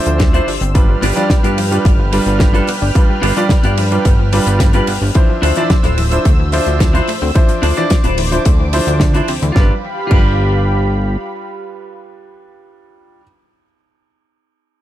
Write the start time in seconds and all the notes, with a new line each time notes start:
Already playing: F3 D4 C5 E5 E6
0.06 D2 F3, closed hi-hat
0.19 D4, muted clean electric guitar stroke, kick, snare, closed hi-hat
0.33 F3 D4 E4 F4 C5, closed hi-hat
0.48 G1 D4, open hi-hat
0.61 G1 C4, muted clean electric guitar stroke, closed hi-hat
0.74 F3 G3 D4 F4 B4 G5 F6, kick, closed hi-hat, ride
0.89 G3
1.02 G1 B3 D4 F4 G4 B4, open hi-hat, ride
1.16 F3 G3 D4 F4 D5, closed hi-hat
1.30 G3, kick, snare, closed hi-hat, ride
1.43 G2 B3 D4 F4 G4 B4, closed hi-hat
1.58 F3, open hi-hat, ride
1.71 G3 D4 F4 B4, muted clean electric guitar stroke, closed hi-hat
1.85 G1 B3, kick, closed hi-hat, ride
1.99 F3
2.12 G3 D4 F4 B4, open hi-hat, ride
2.26 G1 B3, closed hi-hat
2.39 F3, muted clean electric guitar stroke, kick, snare, closed hi-hat, ride
2.53 G3 D4 F4 G4 A4 B4, closed hi-hat
2.67 B3, open hi-hat, ride
2.81 G1 D4, muted clean electric guitar stroke
2.95 F3 G3 D4 F4 B4, kick, closed hi-hat, ride
3.09 G3
3.22 G1 B3 D4 F4 G4 B4, open hi-hat, ride
3.37 F3 G3 D4 F4 D5, closed hi-hat
3.49 G3, kick, snare, closed hi-hat, ride
3.63 G2 B3 D4 F4 G4 D5, closed hi-hat
3.77 F3, open hi-hat, ride
3.91 G3 D4 F4 B4, muted clean electric guitar stroke, closed hi-hat
4.05 G1 B3, kick, closed hi-hat, ride
4.19 F3
4.33 G3 D4 F4 B4, open hi-hat, ride
4.47 G1 B3, closed hi-hat
4.59 F3, muted clean electric guitar stroke, kick, snare, closed hi-hat, ride
4.73 G3 D4 F4 G4 B4, closed hi-hat
4.87 G1 B3, open hi-hat, ride
5.01 G1 D4, muted clean electric guitar stroke
5.15 E3 F3 D4 E4 C5 E6, kick, closed hi-hat, ride
5.30 F3
5.42 D2 A3 D4 E4 F4 C5, open hi-hat, ride
5.55 E3 F3 D4 E4 D5, closed hi-hat
5.70 F3, kick, snare, closed hi-hat, ride
5.83 D1 A3 D4 E4 F4 C5, closed hi-hat
5.98 E3, open hi-hat, ride
6.11 F3 D4 E4 C5, muted clean electric guitar stroke, closed hi-hat
6.25 D2 A3, kick, closed hi-hat, ride
6.40 E3
6.52 F3 D4 C5 E5, open hi-hat, ride
6.66 D2 A3, closed hi-hat
6.79 E3, muted clean electric guitar stroke, kick, snare, closed hi-hat, ride
6.93 F3 D4 E4 F4 C5, closed hi-hat
7.08 A3, open hi-hat, ride
7.21 D2 C4, muted clean electric guitar stroke
7.35 E3 F3 D4 C5 E5 D6, kick, closed hi-hat, ride
7.49 F3, closed hi-hat
7.62 D2 A3 D4 E4 F4 C5, open hi-hat, ride
7.76 E3 F3 D4 E4 D5, closed hi-hat
7.90 F3, kick, snare, closed hi-hat, ride
8.04 D1 A3 D4 E4 F4 C5, closed hi-hat
8.18 E3, open hi-hat, ride
8.31 F3 D4 E4 C5, muted clean electric guitar stroke, closed hi-hat
8.45 D2 A3, kick, closed hi-hat, ride
8.60 E3
8.73 F3 D4 E4 C5 E5, open hi-hat, ride
8.87 D2 D4, closed hi-hat
9.00 D4, muted clean electric guitar stroke, kick, snare, closed hi-hat, ride
9.14 F3 D4 E4 F4 C5, closed hi-hat
9.28 D2 C4, open hi-hat, ride
9.41 D2 E3, muted clean electric guitar stroke, closed hi-hat
9.52 G1 G3 D4 F4 G4, kick, snare
9.56 F3 F4 G4 B4 F5 B5
10.07 G3 D4 F4 G4, kick
10.11 G1 F3 F4 B4, crash